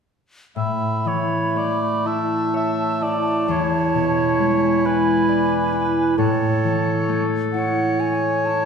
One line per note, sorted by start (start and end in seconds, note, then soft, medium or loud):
0.56 3.52 A2 soft
0.56 3.45 A3 soft
0.56 1.09 E5 soft
0.56 2.08 B5 soft
1.05 3.52 E3 soft
1.05 1.59 C#5 soft
1.55 3.52 A3 soft
1.55 2.08 D5 soft
2.05 3.00 E4 soft
2.05 2.55 E5 soft
2.05 4.84 A5 soft
2.54 3.52 C#5 soft
2.54 3.04 E5 soft
3.01 4.83 E4 soft
3.01 3.52 D5 soft
3.48 6.21 E2 soft
3.48 6.14 E4 medium
3.48 4.88 C#5 soft
3.95 6.21 B2 soft
4.40 6.21 G#3 soft
4.85 5.71 E4 soft
4.85 6.18 B4 soft
4.85 6.15 G#5 soft
5.29 6.21 D5 soft
5.72 7.53 E4 soft
6.17 8.65 A2 medium
6.17 8.62 A4 medium
6.17 7.25 C#5 soft
6.17 7.24 A5 soft
6.64 8.65 E3 soft
7.09 8.65 A3 soft
7.53 8.46 E4 soft
7.53 8.65 C#5 soft
7.53 8.02 F#5 medium
7.99 8.65 C#5 soft
7.99 8.47 G#5 soft
8.46 8.65 E4 soft
8.46 8.65 A5 soft